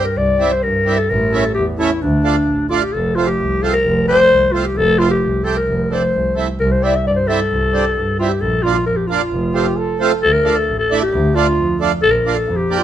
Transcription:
0.04 0.19 A#4 medium
0.16 0.44 C2 medium
0.16 0.54 D5 loud
0.38 0.51 G3 medium
0.38 0.51 C4 medium
0.38 0.52 E4 medium
0.52 0.65 C5 medium
0.63 0.92 G2 medium
0.63 1.00 A#4 medium
0.85 0.97 G3 medium
0.85 0.98 C4 medium
0.85 0.98 E4 medium
0.98 1.11 A4 medium
1.10 1.38 A1 loud
1.10 1.47 A#4 loud
1.32 1.43 A3 medium
1.32 1.44 C#4 medium
1.32 1.44 E4 medium
1.45 1.54 A4 medium
1.54 1.84 E2 medium
1.54 1.66 G4 medium
1.79 1.90 A3 medium
1.79 1.90 C#4 medium
1.79 2.03 E4 medium
1.79 1.91 E4 medium
2.01 2.30 D2 loud
2.01 2.69 D4 medium
2.23 2.35 A3 medium
2.23 2.36 D4 medium
2.23 2.36 F4 medium
2.48 2.75 A1 medium
2.69 2.82 A3 medium
2.69 2.82 D4 medium
2.69 2.83 F4 medium
2.82 2.94 G4 medium
2.92 3.22 F1 loud
2.92 3.17 A4 medium
3.15 3.28 A3 medium
3.15 3.28 C4 soft
3.15 3.29 F4 medium
3.27 3.64 G4 medium
3.40 3.68 C2 medium
3.62 3.74 A3 medium
3.62 3.74 C4 medium
3.62 3.74 F4 medium
3.62 3.72 A4 medium
3.73 4.05 A#4 medium
3.85 4.13 F1 loud
4.07 4.19 A3 medium
4.07 4.19 C4 medium
4.07 4.20 G4 medium
4.07 4.54 C5 loud
4.32 4.59 C2 medium
4.52 4.65 A3 medium
4.52 4.65 C4 medium
4.52 4.67 F4 medium
4.52 4.66 F4 medium
4.65 4.79 G4 medium
4.76 5.04 F1 loud
4.76 5.00 A4 loud
4.99 5.11 A3 medium
4.99 5.11 C4 medium
4.99 5.10 F4 loud
4.99 5.11 F4 medium
5.10 5.46 G4 medium
5.24 5.51 C2 medium
5.43 5.56 A3 medium
5.43 5.56 C4 medium
5.43 5.57 G4 medium
5.43 5.56 A4 medium
5.56 5.95 A#4 medium
5.68 5.96 F1 medium
5.90 6.02 A3 medium
5.90 6.03 C4 medium
5.90 6.03 D4 medium
5.90 6.38 C5 medium
6.14 6.42 C2 medium
6.35 6.47 A3 medium
6.35 6.48 C4 medium
6.35 6.48 E4 medium
6.60 6.87 C2 loud
6.60 6.73 A#4 loud
6.71 6.85 C5 medium
6.81 6.93 G3 soft
6.81 6.94 C4 medium
6.81 6.94 E4 medium
6.81 6.97 D5 loud
6.95 7.06 E5 medium
7.05 7.32 G2 medium
7.05 7.13 D5 loud
7.13 7.29 C5 medium
7.13 7.17 D5 medium
7.27 7.40 G3 medium
7.27 7.40 C4 medium
7.27 7.40 E4 medium
7.27 8.19 A4 medium
7.51 7.78 C2 medium
7.73 7.85 G3 medium
7.73 7.85 C4 medium
7.73 7.85 D4 medium
7.96 8.24 G2 medium
8.19 8.31 G3 medium
8.19 8.31 C4 medium
8.19 8.32 E4 medium
8.19 8.31 F4 medium
8.29 8.43 G4 medium
8.41 8.68 A#1 loud
8.41 8.64 A4 loud
8.63 8.76 A#3 medium
8.63 8.77 D4 medium
8.63 8.74 F4 medium
8.63 8.77 F4 medium
8.74 8.86 F4 medium
8.86 9.14 F2 medium
8.86 8.98 A#4 medium
8.97 9.09 G4 medium
9.07 9.21 A#3 medium
9.07 9.22 D4 medium
9.07 9.99 F4 medium
9.07 9.22 F4 medium
9.32 9.59 F1 loud
9.54 9.66 A3 medium
9.54 9.66 C4 medium
9.54 9.67 F4 medium
9.54 9.79 G4 medium
9.78 10.23 A4 loud
9.99 10.11 A3 medium
9.99 10.12 C4 medium
9.99 10.12 F4 medium
10.21 10.50 D2 medium
10.21 10.34 A4 loud
10.33 10.57 A#4 loud
10.44 10.56 A3 medium
10.44 10.57 D4 medium
10.44 10.57 F4 medium
10.56 10.78 A4 medium
10.68 10.95 A1 medium
10.79 11.00 A4 medium
10.90 11.02 A3 medium
10.90 11.02 D4 medium
10.90 11.02 E4 medium
11.02 11.37 G4 medium
11.14 11.40 D2 loud
11.35 11.46 A3 medium
11.35 11.47 D4 medium
11.35 11.80 F4 medium
11.35 11.47 F4 medium
11.58 11.85 F2 medium
11.80 11.91 A3 medium
11.80 11.92 D4 medium
11.80 11.92 F4 medium
12.02 12.30 A#1 medium
12.02 12.13 A4 loud
12.11 12.36 A#4 loud
12.25 12.36 A#3 medium
12.25 12.37 D4 medium
12.25 12.37 F4 medium
12.35 12.58 A4 medium
12.48 12.74 F2 loud
12.56 12.80 G4 medium
12.70 12.81 A#3 medium
12.70 12.81 D4 medium
12.70 12.82 G4 medium
12.79 12.84 F4 medium

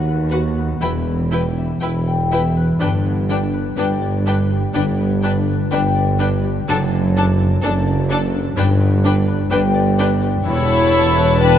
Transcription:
0.00 0.69 D#2 medium
0.00 0.70 D#2 medium
0.00 0.86 D#3 medium
0.00 0.56 B3 soft
0.00 0.32 F#4 medium
0.00 0.85 F#5 medium
0.08 2.55 B4 soft
0.31 0.40 F#4 medium
0.31 0.86 F#4 medium
0.31 0.39 B4 medium
0.31 0.39 F#5 medium
0.57 3.04 B3 medium
0.80 1.69 E1 medium
0.80 1.70 E1 medium
0.80 1.70 E2 medium
0.80 2.85 E3 medium
0.80 0.89 E4 medium
0.80 0.90 B4 medium
0.80 0.89 G5 medium
1.07 2.85 E4 soft
1.32 1.40 E4 medium
1.32 4.49 G4 soft
1.32 1.40 B4 medium
1.32 1.40 G5 medium
1.58 2.31 E5 soft
1.81 2.69 E1 medium
1.81 2.70 E2 medium
1.81 1.89 E4 medium
1.81 1.89 B4 medium
1.81 1.89 G5 medium
1.81 5.73 B5 medium
2.07 3.76 G5 medium
2.32 2.40 E4 medium
2.32 2.40 B4 medium
2.32 2.85 E5 medium
2.32 2.40 G5 medium
2.57 3.52 B4 medium
2.80 3.65 G1 medium
2.80 3.66 G1 medium
2.80 6.70 G2 medium
2.80 3.67 G2 medium
2.80 2.88 D4 medium
2.80 2.90 B4 medium
2.80 2.89 G5 medium
3.05 4.98 B3 soft
3.29 5.22 D4 medium
3.29 3.38 D4 medium
3.29 3.38 B4 soft
3.29 3.38 G5 medium
3.54 4.26 B4 medium
3.77 4.63 G1 medium
3.77 4.64 G2 medium
3.77 3.86 D4 medium
3.77 3.85 B4 medium
3.77 5.70 G5 medium
3.77 3.86 G5 medium
4.02 5.94 D5 medium
4.26 4.34 D4 medium
4.26 4.35 B4 medium
4.26 5.46 B4 medium
4.26 4.34 G5 medium
4.51 6.43 G4 medium
4.73 5.59 G1 medium
4.73 5.60 G1 medium
4.73 5.60 G2 medium
4.73 6.73 D3 medium
4.73 4.83 D4 medium
4.73 4.83 B4 medium
4.73 4.82 G5 medium
5.00 6.73 B3 medium
5.22 7.15 D4 medium
5.22 5.32 D4 medium
5.22 5.32 B4 medium
5.22 5.30 G5 medium
5.47 6.18 B4 medium
5.70 6.57 G1 medium
5.70 6.58 G2 medium
5.70 5.80 D4 medium
5.70 5.79 B4 medium
5.70 6.73 G5 medium
5.70 5.79 G5 medium
5.95 7.86 D5 medium
6.19 6.27 D4 medium
6.19 6.73 B4 medium
6.19 6.28 B4 medium
6.19 6.28 G5 medium
6.44 6.73 G4 medium
6.68 7.52 F#1 medium
6.68 7.53 F#1 medium
6.68 8.61 F#2 medium
6.68 7.53 F#2 medium
6.68 6.77 D4 medium
6.68 6.76 A4 medium
6.68 6.77 A5 medium
6.93 8.61 A3 medium
7.16 8.33 D4 medium
7.16 7.26 D4 medium
7.16 7.25 A4 medium
7.16 7.25 A5 medium
7.40 8.09 A4 medium
7.62 8.46 F#1 medium
7.62 8.47 F#2 medium
7.62 7.72 D4 medium
7.62 7.71 A4 medium
7.62 7.71 A5 medium
7.62 8.61 A5 medium
7.87 9.73 D5 medium
8.10 8.18 D4 medium
8.10 8.61 A4 medium
8.10 8.19 A4 medium
8.10 8.18 A5 medium
8.34 9.03 D4 medium
8.57 9.40 G1 medium
8.57 10.49 G2 medium
8.57 9.40 G2 medium
8.57 8.65 D4 medium
8.57 8.66 B4 medium
8.57 8.66 G5 medium
8.81 10.67 B3 medium
9.04 9.12 D4 medium
9.04 10.49 D4 medium
9.04 9.13 B4 medium
9.04 9.13 G5 medium
9.28 9.97 B4 medium
9.50 10.34 G1 medium
9.50 10.34 G1 loud
9.50 10.35 G2 medium
9.50 9.59 D4 medium
9.50 9.59 B4 medium
9.50 9.59 G5 medium
9.50 11.39 G5 medium
9.74 10.49 D5 medium
9.98 10.07 D4 medium
9.98 11.15 B4 medium
9.98 10.07 B4 medium
9.98 10.07 G5 medium
10.21 11.58 G4 medium
10.45 11.58 E1 medium
10.45 11.58 E2 medium
10.45 11.36 E4 medium
10.45 11.37 C#5 medium
10.45 11.58 A5 medium
10.69 11.58 B3 medium
10.93 11.58 E4 medium
11.17 11.58 B4 medium
11.40 11.58 D4 medium
11.40 11.58 B4 medium
11.40 11.58 G5 medium

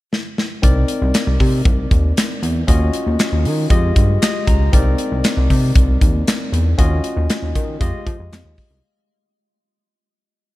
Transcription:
0.13 snare medium
0.38 snare medium
0.62 0.85 C2 loud
0.62 2.64 C4 medium
0.62 2.64 D#4 medium
0.62 2.64 A#4 medium
0.62 2.65 D5 medium
0.62 kick loud
0.62 closed hi-hat medium
0.88 closed hi-hat medium
1.02 1.12 C2 loud
1.14 snare loud
1.14 clap medium
1.14 closed hi-hat medium
1.27 1.38 C2 loud
1.40 1.62 C3 loud
1.40 kick medium
1.40 open hi-hat medium
1.65 1.87 C2 medium
1.65 kick loud
1.65 closed hi-hat loud
1.91 2.13 D#2 medium
1.91 kick loud
1.91 closed hi-hat medium
2.17 snare loud
2.17 clap medium
2.17 closed hi-hat loud
2.43 2.64 E2 medium
2.43 closed hi-hat medium
2.67 2.90 D#2 loud
2.67 3.68 C#4 medium
2.67 3.68 F4 medium
2.67 3.69 F#4 medium
2.67 3.69 D#5 medium
2.67 kick loud
2.67 closed hi-hat medium
2.94 closed hi-hat medium
3.07 3.17 D#2 medium
3.19 snare loud
3.19 clap medium
3.19 closed hi-hat medium
3.32 3.47 D#2 loud
3.45 3.67 D#3 loud
3.45 open hi-hat medium
3.69 3.92 F2 loud
3.69 4.71 G#3 medium
3.69 4.71 F4 medium
3.69 4.71 G4 medium
3.69 4.21 D#5 medium
3.69 kick loud
3.69 closed hi-hat medium
3.96 4.18 G2 medium
3.96 kick loud
3.96 closed hi-hat medium
4.22 4.46 D#5 medium
4.22 snare loud
4.22 clap medium
4.22 closed hi-hat loud
4.47 4.69 C#2 loud
4.47 4.71 A#5 medium
4.47 kick medium
4.47 closed hi-hat medium
4.72 4.95 C2 loud
4.72 6.74 C4 medium
4.72 6.74 D#4 medium
4.72 6.75 A#4 medium
4.72 6.75 D5 medium
4.72 kick medium
4.72 closed hi-hat medium
4.98 closed hi-hat medium
5.12 5.23 C2 loud
5.24 snare loud
5.24 clap medium
5.24 closed hi-hat loud
5.37 5.48 C2 loud
5.50 5.72 C3 loud
5.50 kick medium
5.50 open hi-hat medium
5.75 5.97 C2 medium
5.75 kick loud
5.75 closed hi-hat loud
6.01 6.23 D#2 medium
6.01 kick loud
6.01 closed hi-hat medium
6.28 snare loud
6.28 clap medium
6.28 closed hi-hat loud
6.52 6.74 E2 loud
6.52 closed hi-hat medium
6.78 7.00 D#2 loud
6.78 7.79 C#4 medium
6.78 7.79 F4 medium
6.78 7.79 F#4 medium
6.78 7.79 D#5 medium
6.78 kick medium
6.78 closed hi-hat medium
7.04 closed hi-hat medium
7.17 7.28 D#2 loud
7.30 snare loud
7.30 clap medium
7.30 closed hi-hat loud
7.43 7.53 D#2 medium
7.55 7.77 D#3 loud
7.55 kick medium
7.55 closed hi-hat medium
7.80 7.92 F2 loud
7.80 8.81 G#3 medium
7.80 8.81 F4 medium
7.80 8.82 G4 medium
7.80 8.82 D#5 medium
7.80 kick loud
7.80 closed hi-hat medium
8.06 8.17 F3 loud
8.06 kick loud
8.06 closed hi-hat medium
8.19 8.30 F2 medium
8.32 8.43 F2 medium
8.32 snare loud
8.32 clap medium
8.32 closed hi-hat loud
8.45 8.56 D#2 loud
8.58 kick medium
8.58 open hi-hat medium
8.71 8.81 C2 medium

